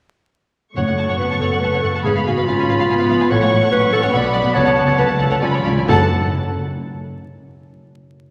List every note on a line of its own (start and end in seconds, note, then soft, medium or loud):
0.76 0.81 F#1 soft
0.76 2.06 F#2 soft
0.76 0.81 F#2 soft
0.76 1.37 F#2 medium
0.76 1.17 A3 soft
0.76 1.16 C#5 medium
0.76 0.81 C#5 soft
0.76 0.81 F#5 soft
0.76 2.00 C#6 soft
0.87 0.92 F#2 soft
0.87 0.92 F#5 soft
0.97 1.02 F#1 soft
0.97 1.02 F#2 soft
0.97 2.06 A3 soft
0.97 1.03 F#5 soft
0.97 1.03 A5 soft
1.09 1.13 F#2 soft
1.09 1.13 C#5 soft
1.09 1.14 F#5 soft
1.19 1.24 F#1 soft
1.19 1.23 F#2 soft
1.19 1.61 B3 soft
1.19 1.61 F#4 soft
1.19 1.28 B4 medium
1.19 1.25 F#5 soft
1.30 1.34 F#2 soft
1.30 1.35 F#5 soft
1.30 1.35 A5 soft
1.39 1.45 F#1 soft
1.39 1.45 F#2 soft
1.39 1.62 A4 medium
1.39 2.06 A4 soft
1.39 1.45 C#5 soft
1.39 1.46 F#5 soft
1.51 1.56 F#2 soft
1.51 1.57 F#5 soft
1.60 1.66 F#1 soft
1.60 1.66 F#2 soft
1.60 2.04 A3 soft
1.60 2.07 F#4 soft
1.60 1.82 B4 medium
1.60 1.67 F#5 soft
1.60 1.68 A5 soft
1.73 1.77 F#2 medium
1.73 1.78 C#5 soft
1.73 1.78 F#5 soft
1.82 1.88 F#1 soft
1.82 1.88 F#2 soft
1.82 2.06 C#3 soft
1.82 1.92 A4 medium
1.82 1.89 F#5 soft
1.94 1.98 F#2 soft
1.94 1.99 F#5 soft
1.94 2.00 A5 soft
2.04 2.08 G#1 medium
2.04 3.33 G#2 soft
2.04 2.09 G#2 medium
2.04 2.47 B3 soft
2.04 2.14 G#4 medium
2.04 2.10 B4 medium
2.04 2.10 F5 medium
2.04 3.29 B5 soft
2.15 2.20 G#2 soft
2.15 2.21 F5 soft
2.25 2.30 G#1 soft
2.25 2.30 G#2 soft
2.25 3.33 G#3 soft
2.25 2.47 F#4 medium
2.25 2.31 F5 soft
2.25 2.31 G#5 soft
2.37 2.41 G#2 medium
2.37 2.42 B4 medium
2.37 2.42 F5 medium
2.46 2.51 G#1 soft
2.46 2.52 G#2 soft
2.46 2.89 C#4 soft
2.46 3.33 F4 medium
2.46 2.88 F4 soft
2.46 2.52 F5 soft
2.58 2.62 G#2 soft
2.58 2.63 F5 soft
2.58 2.63 G#5 soft
2.68 2.72 G#1 medium
2.68 2.72 G#2 medium
2.68 3.33 G#4 soft
2.68 2.73 B4 medium
2.68 2.73 F5 medium
2.78 2.83 G#2 soft
2.78 2.84 F5 medium
2.89 2.93 G#1 soft
2.89 2.93 G#2 soft
2.89 3.30 B3 medium
2.89 3.33 F4 soft
2.89 2.94 F5 soft
2.89 2.94 G#5 soft
2.99 3.04 G#2 medium
2.99 3.04 B4 medium
2.99 3.04 F5 medium
3.10 3.14 G#1 soft
3.10 3.14 G#2 soft
3.10 3.32 F3 soft
3.10 3.15 F5 medium
3.20 3.24 G#2 soft
3.20 3.24 F5 medium
3.20 3.24 G#5 medium
3.31 3.35 A1 medium
3.31 3.35 A2 medium
3.31 4.15 A2 medium
3.31 3.72 A3 medium
3.31 3.35 A4 medium
3.31 3.71 C#5 medium
3.31 3.35 F#5 medium
3.31 4.12 C#6 medium
3.41 3.45 A2 medium
3.41 3.46 C#5 soft
3.41 3.46 F#5 soft
3.51 3.56 A1 medium
3.51 3.56 A2 medium
3.51 4.75 F#3 soft
3.51 3.56 F#5 soft
3.62 3.66 A2 medium
3.62 3.66 A4 medium
3.62 3.66 F#5 medium
3.71 3.77 A1 medium
3.71 3.76 A2 soft
3.71 4.13 C#4 medium
3.71 4.33 F#4 soft
3.71 3.92 B4 medium
3.71 3.76 C#5 soft
3.71 3.76 F#5 medium
3.82 3.87 A2 soft
3.82 3.86 F#5 medium
3.92 3.97 A1 medium
3.92 3.98 A2 medium
3.92 3.97 A4 medium
3.92 4.02 A4 medium
3.92 4.15 C#5 medium
3.92 3.97 F#5 medium
4.03 4.08 A2 soft
4.03 4.07 C#5 medium
4.03 4.07 F#5 medium
4.13 4.18 B1 medium
4.13 4.57 B2 medium
4.13 4.18 B2 soft
4.13 4.98 B3 medium
4.13 4.54 D5 medium
4.13 4.17 F#5 medium
4.13 4.56 B5 medium
4.23 4.28 B2 medium
4.23 4.28 B4 medium
4.23 4.28 F#5 medium
4.33 4.39 B1 medium
4.33 4.39 B2 medium
4.33 4.57 B4 medium
4.33 4.38 D5 medium
4.33 4.38 F#5 soft
4.44 4.49 B2 medium
4.44 4.48 F#5 medium
4.54 4.60 C#2 medium
4.54 5.42 C#3 medium
4.54 4.60 C#3 medium
4.54 4.58 A4 medium
4.54 4.97 C#5 medium
4.54 4.58 F#5 medium
4.54 5.43 A5 medium
4.65 4.71 C#3 medium
4.65 4.70 C#5 soft
4.65 4.70 F#5 soft
4.76 4.81 C#2 medium
4.76 4.81 C#3 soft
4.76 5.44 F#3 soft
4.76 4.81 F#5 medium
4.87 4.92 C#3 medium
4.87 4.91 A4 medium
4.87 4.92 F#5 medium
4.98 5.03 C#2 medium
4.98 5.03 C#3 soft
4.98 5.42 A3 medium
4.98 5.45 F#4 soft
4.98 5.09 B4 medium
4.98 5.02 C#5 soft
4.98 5.03 F#5 soft
5.08 5.14 C#3 medium
5.08 5.13 F#5 soft
5.19 5.25 C#2 medium
5.19 5.25 C#3 medium
5.19 5.24 A4 medium
5.19 5.45 A4 medium
5.19 5.24 F#5 medium
5.31 5.37 C#3 soft
5.31 5.35 C#5 medium
5.31 5.35 F#5 soft
5.42 5.47 C#2 soft
5.42 5.49 C#3 soft
5.42 5.90 C#3 soft
5.42 5.48 C#3 soft
5.42 5.66 C#4 medium
5.42 5.88 F4 medium
5.42 5.47 D5 soft
5.42 5.47 G#5 soft
5.42 5.67 B5 medium
5.50 5.57 C#3 soft
5.50 5.58 C#5 medium
5.50 5.58 D5 medium
5.55 5.60 C#3 medium
5.55 5.66 C#3 soft
5.65 5.70 C#2 soft
5.65 5.71 C#3 soft
5.65 5.74 C#3 medium
5.65 5.90 D4 soft
5.65 5.91 B4 soft
5.65 5.70 D5 soft
5.65 5.70 F5 soft
5.75 5.83 C#3 medium
5.75 5.83 C#3 soft
5.75 5.82 D5 soft
5.75 5.82 G#5 soft
5.85 6.13 F#1 medium
5.85 6.13 F#2 medium
5.85 6.09 F#2 loud
5.85 6.13 F#3 medium
5.85 6.13 A3 medium
5.85 6.13 C#4 medium
5.85 6.13 A4 medium
5.85 6.07 A4 medium
5.85 6.13 A5 medium
5.89 6.14 F#2 medium
5.89 6.13 A4 medium
5.89 6.13 C#5 medium
5.89 6.13 F#5 medium